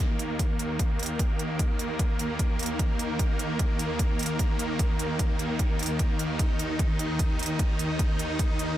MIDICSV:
0, 0, Header, 1, 3, 480
1, 0, Start_track
1, 0, Tempo, 400000
1, 1913, Time_signature, 4, 2, 24, 8
1, 10532, End_track
2, 0, Start_track
2, 0, Title_t, "Supersaw synth"
2, 0, Program_c, 0, 81
2, 0, Note_on_c, 0, 39, 83
2, 0, Note_on_c, 0, 51, 75
2, 0, Note_on_c, 0, 58, 84
2, 7648, Note_off_c, 0, 58, 0
2, 7672, Note_on_c, 0, 63, 92
2, 10532, Note_off_c, 0, 39, 0
2, 10532, Note_off_c, 0, 51, 0
2, 10532, Note_off_c, 0, 63, 0
2, 10532, End_track
3, 0, Start_track
3, 0, Title_t, "Drums"
3, 232, Note_on_c, 9, 42, 52
3, 352, Note_off_c, 9, 42, 0
3, 472, Note_on_c, 9, 36, 90
3, 472, Note_on_c, 9, 42, 75
3, 592, Note_off_c, 9, 36, 0
3, 592, Note_off_c, 9, 42, 0
3, 712, Note_on_c, 9, 42, 52
3, 832, Note_off_c, 9, 42, 0
3, 952, Note_on_c, 9, 36, 95
3, 952, Note_on_c, 9, 42, 78
3, 1072, Note_off_c, 9, 36, 0
3, 1072, Note_off_c, 9, 42, 0
3, 1193, Note_on_c, 9, 42, 45
3, 1233, Note_off_c, 9, 42, 0
3, 1233, Note_on_c, 9, 42, 61
3, 1272, Note_off_c, 9, 42, 0
3, 1272, Note_on_c, 9, 42, 80
3, 1392, Note_off_c, 9, 42, 0
3, 1432, Note_on_c, 9, 36, 96
3, 1433, Note_on_c, 9, 42, 83
3, 1552, Note_off_c, 9, 36, 0
3, 1553, Note_off_c, 9, 42, 0
3, 1673, Note_on_c, 9, 42, 56
3, 1793, Note_off_c, 9, 42, 0
3, 1912, Note_on_c, 9, 36, 95
3, 1913, Note_on_c, 9, 42, 83
3, 2032, Note_off_c, 9, 36, 0
3, 2033, Note_off_c, 9, 42, 0
3, 2152, Note_on_c, 9, 42, 55
3, 2272, Note_off_c, 9, 42, 0
3, 2392, Note_on_c, 9, 36, 98
3, 2392, Note_on_c, 9, 42, 77
3, 2512, Note_off_c, 9, 36, 0
3, 2512, Note_off_c, 9, 42, 0
3, 2632, Note_on_c, 9, 42, 53
3, 2752, Note_off_c, 9, 42, 0
3, 2872, Note_on_c, 9, 36, 93
3, 2872, Note_on_c, 9, 42, 79
3, 2992, Note_off_c, 9, 36, 0
3, 2992, Note_off_c, 9, 42, 0
3, 3112, Note_on_c, 9, 42, 49
3, 3153, Note_off_c, 9, 42, 0
3, 3153, Note_on_c, 9, 42, 65
3, 3192, Note_off_c, 9, 42, 0
3, 3192, Note_on_c, 9, 42, 81
3, 3312, Note_off_c, 9, 42, 0
3, 3352, Note_on_c, 9, 36, 90
3, 3352, Note_on_c, 9, 42, 79
3, 3472, Note_off_c, 9, 36, 0
3, 3472, Note_off_c, 9, 42, 0
3, 3592, Note_on_c, 9, 42, 55
3, 3712, Note_off_c, 9, 42, 0
3, 3832, Note_on_c, 9, 36, 99
3, 3832, Note_on_c, 9, 42, 80
3, 3952, Note_off_c, 9, 36, 0
3, 3952, Note_off_c, 9, 42, 0
3, 4072, Note_on_c, 9, 42, 53
3, 4192, Note_off_c, 9, 42, 0
3, 4312, Note_on_c, 9, 36, 93
3, 4312, Note_on_c, 9, 42, 77
3, 4432, Note_off_c, 9, 36, 0
3, 4432, Note_off_c, 9, 42, 0
3, 4552, Note_on_c, 9, 42, 55
3, 4672, Note_off_c, 9, 42, 0
3, 4792, Note_on_c, 9, 36, 92
3, 4792, Note_on_c, 9, 42, 78
3, 4912, Note_off_c, 9, 36, 0
3, 4912, Note_off_c, 9, 42, 0
3, 5032, Note_on_c, 9, 42, 47
3, 5072, Note_off_c, 9, 42, 0
3, 5072, Note_on_c, 9, 42, 63
3, 5112, Note_off_c, 9, 42, 0
3, 5112, Note_on_c, 9, 42, 79
3, 5232, Note_off_c, 9, 42, 0
3, 5272, Note_on_c, 9, 36, 93
3, 5272, Note_on_c, 9, 42, 80
3, 5392, Note_off_c, 9, 36, 0
3, 5392, Note_off_c, 9, 42, 0
3, 5512, Note_on_c, 9, 42, 55
3, 5632, Note_off_c, 9, 42, 0
3, 5752, Note_on_c, 9, 36, 97
3, 5752, Note_on_c, 9, 42, 78
3, 5872, Note_off_c, 9, 36, 0
3, 5872, Note_off_c, 9, 42, 0
3, 5992, Note_on_c, 9, 42, 53
3, 6112, Note_off_c, 9, 42, 0
3, 6232, Note_on_c, 9, 36, 95
3, 6232, Note_on_c, 9, 42, 77
3, 6352, Note_off_c, 9, 36, 0
3, 6352, Note_off_c, 9, 42, 0
3, 6472, Note_on_c, 9, 42, 51
3, 6592, Note_off_c, 9, 42, 0
3, 6712, Note_on_c, 9, 36, 96
3, 6712, Note_on_c, 9, 42, 71
3, 6832, Note_off_c, 9, 36, 0
3, 6832, Note_off_c, 9, 42, 0
3, 6952, Note_on_c, 9, 42, 45
3, 6992, Note_off_c, 9, 42, 0
3, 6992, Note_on_c, 9, 42, 58
3, 7032, Note_off_c, 9, 42, 0
3, 7032, Note_on_c, 9, 42, 76
3, 7152, Note_off_c, 9, 42, 0
3, 7192, Note_on_c, 9, 36, 92
3, 7192, Note_on_c, 9, 42, 74
3, 7312, Note_off_c, 9, 36, 0
3, 7312, Note_off_c, 9, 42, 0
3, 7432, Note_on_c, 9, 42, 53
3, 7552, Note_off_c, 9, 42, 0
3, 7672, Note_on_c, 9, 36, 101
3, 7673, Note_on_c, 9, 42, 77
3, 7792, Note_off_c, 9, 36, 0
3, 7793, Note_off_c, 9, 42, 0
3, 7912, Note_on_c, 9, 42, 52
3, 8032, Note_off_c, 9, 42, 0
3, 8152, Note_on_c, 9, 36, 99
3, 8152, Note_on_c, 9, 42, 71
3, 8272, Note_off_c, 9, 36, 0
3, 8272, Note_off_c, 9, 42, 0
3, 8392, Note_on_c, 9, 42, 50
3, 8512, Note_off_c, 9, 42, 0
3, 8632, Note_on_c, 9, 36, 100
3, 8632, Note_on_c, 9, 42, 74
3, 8752, Note_off_c, 9, 36, 0
3, 8752, Note_off_c, 9, 42, 0
3, 8872, Note_on_c, 9, 42, 46
3, 8912, Note_off_c, 9, 42, 0
3, 8912, Note_on_c, 9, 42, 57
3, 8952, Note_off_c, 9, 42, 0
3, 8952, Note_on_c, 9, 42, 72
3, 9072, Note_off_c, 9, 42, 0
3, 9112, Note_on_c, 9, 36, 100
3, 9112, Note_on_c, 9, 42, 78
3, 9232, Note_off_c, 9, 36, 0
3, 9232, Note_off_c, 9, 42, 0
3, 9352, Note_on_c, 9, 42, 52
3, 9472, Note_off_c, 9, 42, 0
3, 9592, Note_on_c, 9, 36, 104
3, 9592, Note_on_c, 9, 42, 76
3, 9712, Note_off_c, 9, 36, 0
3, 9712, Note_off_c, 9, 42, 0
3, 9832, Note_on_c, 9, 42, 52
3, 9952, Note_off_c, 9, 42, 0
3, 10072, Note_on_c, 9, 36, 105
3, 10072, Note_on_c, 9, 42, 72
3, 10192, Note_off_c, 9, 36, 0
3, 10192, Note_off_c, 9, 42, 0
3, 10312, Note_on_c, 9, 42, 50
3, 10432, Note_off_c, 9, 42, 0
3, 10532, End_track
0, 0, End_of_file